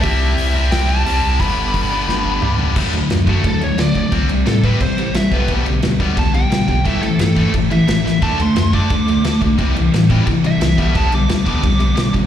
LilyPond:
<<
  \new Staff \with { instrumentName = "Lead electric guitar" } { \time 4/4 \key g \lydian \tempo 4 = 176 e''2 g''8 a''4. | b''2.~ b''8 r8 | r4. fis'8 a'8 cis''8 d''4 | r4 a'8 b'8 c''4 e''8 b'8 |
r2 a''8 g''4 g''8 | e''8 a'8 a'4 r8 e''4. | a''8 c'''4 d'''2 r8 | r2 r8 e''4. |
a''8 d'''4 d'''2 r8 | }
  \new Staff \with { instrumentName = "Distorted electric guitar" } { \clef bass \time 4/4 \key g \lydian <c g c' e'>4. <c g c' e'>4. <c g c' e'>4 | <g, d g b d'>4. <g, d g b d'>4. <g, d g b d'>4 | <d fis a>8 <d fis>8 <d fis>8 <d fis a>8 <d fis>8 <d fis>8 <d fis>8 <d fis>8 | <c g c'>8 <c g>8 <c g>8 <c g c'>8 <c g>8 <c g>8 <c g>8 <b, g b>8 |
<b, g b>8 <b, g>8 <b, g>8 <b, g b>8 <b, g>8 <b, g>8 <b, g>8 <b, g>8 | <a, e a>8 <a, e>8 <a, e>8 <a, e a>8 <a, e>8 <a, e>8 <a, e>8 <a, e>8 | <d a d'>8 <d a>8 <d a>8 <d a d'>8 <d a>8 <d a>8 <d a>8 <d a>8 | <c e g>8 <c e>8 <c e>8 <c e g>8 <c e>8 <c e>8 <c e>8 <b, g b>8 |
<b, g b>8 <b, g>8 <b, g>8 <b, g b>8 <b, g>8 <b, g>8 <b, g>8 <b, g>8 | }
  \new Staff \with { instrumentName = "Overdriven electric guitar" } { \clef bass \time 4/4 \key g \lydian <c g c'>4. <c g c'>4. <c g c'>4 | <g, d g>4. <g, d g>4. <g, d g>4 | <d a d'>8 <d a>8 <d a>8 <d a d'>8 <d a>8 <d a>8 <d a>8 <d a>8 | <c g c'>8 <c g>8 <c g>8 <c g c'>8 <c g>8 <c g>8 <c g>8 <g, d g>8 |
<g, d g>8 <g, d>8 <g, d>8 <g, d g>8 <g, d>8 <g, d>8 <g, d>8 <g, d>8 | <a, e a>8 <a, e>8 <a, e>8 <a, e a>8 <a, e>8 <a, e>8 <a, e>8 <a, e>8 | <d a d'>8 <d a>8 <d a>8 <d a d'>8 <d a>8 <d a>8 <d a>8 <d a>8 | <c g c'>8 <c g>8 <c g>8 <c g c'>8 <c g>8 <c g>8 <c g>8 <g, d g>8 |
<g, d g>8 <g, d>8 <g, d>8 <g, d g>8 <g, d>8 <g, d>8 <g, d>8 <g, d>8 | }
  \new Staff \with { instrumentName = "Sub bass" } { \clef bass \time 4/4 \key g \lydian c,4 c,8 c,8 c,8 c,8 c,8 c,8 | g,,8 g,,8 g,,8 g,,8 g,,8 g,,8 cis,4 | d,8 d,8 fis,4 d,4 d8 d8 | c,8 c,8 a,4 a,,4 a,,8 b,,8 |
b,,8 b,,8 d,4 b,,4 b,8 b,,8 | a,,8 a,,8 g,4 g,,4 a,,8 a,,8 | d,8 d,8 fis,4 d,4 d8 b,,8 | c,8 c,8 a,4 a,,4 c,8 b,,8 |
b,,8 b,,8 d,4 b,,4 b,8 gis,,8 | }
  \new DrumStaff \with { instrumentName = "Drums" } \drummode { \time 4/4 <hho bd>4 hho4 <hho sn>4 hho4 | <hho bd>4 <hho bd>4 sn4 toml8 tomfh8 | <cymc bd>8 cymc8 <cymc sn>8 <cymc bd>8 <cymc bd>8 cymc8 <cymc sn>8 <cymc bd>8 | <cymc bd>8 cymc8 <cymc sn>8 <cymc bd>8 <cymc bd>8 cymc8 <cymc sn>8 <cymc bd>8 |
<cymc bd>8 cymc8 <cymc sn>8 <cymc bd>8 <cymc bd>8 cymc8 <cymc sn>8 <cymc bd>8 | <cymc bd>8 cymc8 <cymc sn>8 <cymc bd>8 <cymc bd>8 cymc8 <cymc sn>8 sn8 | <cymc bd>8 cymc8 <cymc sn>8 <cymc bd>8 <cymc bd>8 cymc8 <cymc sn>8 <cymc bd>8 | <cymc bd>8 cymc8 <cymc sn>8 <cymc bd>8 <cymc bd>8 cymc8 <cymc sn>8 <cymc bd>8 |
<cymc bd>8 cymc8 <cymc sn>8 <cymc bd>8 <cymc bd>8 cymc8 <cymc sn>8 <cymc bd>8 | }
>>